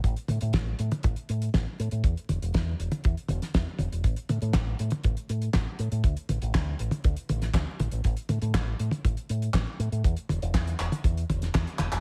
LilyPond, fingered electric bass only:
\new Staff \with { instrumentName = "Fingered electric bass" } { \clef bass \time 4/4 \key d \lydian \tempo 4 = 120 a,,16 r16 a,16 a,16 a,,16 r16 a,16 r16 a,,16 r16 a,16 r16 a,,16 r16 a,16 a,16 | e,16 r16 e,,16 e,,16 e,16 r16 e,,16 r16 e,16 r16 e,,16 r16 e,16 r16 e,,16 e,,16 | a,,16 r16 a,16 a,16 a,,16 r16 a,16 r16 a,,16 r16 a,16 r16 a,,16 r16 a,16 a,16 | d,16 r16 a,,16 a,,16 d,16 r16 a,,16 r16 d,16 r16 a,,16 r16 d,16 r16 a,,16 a,,16 |
a,,16 r16 a,16 a,16 a,,16 r16 a,16 r16 a,,16 r16 a,16 r16 a,,16 r16 a,16 a,16 | e,16 r16 e,,16 e,,16 e,16 r16 e,,16 r16 e,16 r16 e,,16 r16 e,16 r16 e,,16 e,,16 | }